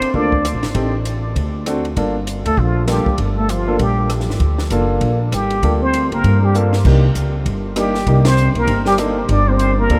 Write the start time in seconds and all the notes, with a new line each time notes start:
Already playing: C4 C5
0.01 muted upright bass stroke, ride
0.14 D2 A#3 D4 F4 A4 D5, kick
0.32 kick
0.45 cross-stick, hi-hat pedal, ride
0.53 A#1
0.63 G#1, snare, ride
0.74 A1 C4 D#4 G4 A4, kick, ride
1.05 hi-hat pedal, ride
1.35 D2, kick, ride
1.66 C4 D4 F#4 A4, cross-stick, hi-hat pedal, ride
1.85 ride
1.96 G1 A#3 D4 F4 A4, kick, ride
2.27 hi-hat pedal, ride
2.45 D2 A3 A4, ride
2.57 A#1 F3 F4, kick
2.88 G3 A#3 D4 F4 G4 A4, cross-stick, snare, hi-hat pedal, ride
3.06 muted upright bass stroke, kick
3.18 G1, kick, ride
3.37 A3 A4
3.49 F3 F4, hi-hat pedal, ride
3.67 A#3 D4 F4 A4
3.79 A#1 G3 G4, kick, ride
4.10 cross-stick, hi-hat pedal, ride
4.20 snare
4.27 G#1, snare
4.40 D2, kick, ride
4.58 snare
4.70 F#1 A#3 D4 F4 A4, hi-hat pedal, ride
5.01 A#1, kick, ride
5.31 G#1 G3 G4, cross-stick, hi-hat pedal, ride
5.50 ride
5.62 D2 A#3 D4 F4 A4, kick, ride
5.81 C4 C5
5.93 hi-hat pedal, ride
6.11 F#1 A#3 A#4, ride
6.24 G2, kick, ride
6.43 G3 G4
6.55 A#3 D4 F4 A4, hi-hat pedal
6.73 snare
6.85 C2 A#3 D4 D#4 G4, kick, crash
7.15 C#2, hi-hat pedal, ride
7.45 G1, kick, ride
7.76 G3 A#3 D4 D#4 G4, cross-stick, hi-hat pedal, ride
7.95 snare
8.06 C2 A#3 D4 D#4 G4, kick, ride
8.25 C4 C5, snare, ride
8.37 hi-hat pedal
8.54 B1 A#3, ride
8.58 A#4
8.67 G1, kick, ride
8.85 G3 G4, snare
8.98 A#3 D4 D#4 A4, cross-stick, hi-hat pedal, ride
9.28 G1 D4 D5, kick, ride
9.48 C4 C5
9.59 hi-hat pedal, ride
9.78 A#3 A#4
9.89 D2 A#3 D4 F4 A4, kick, ride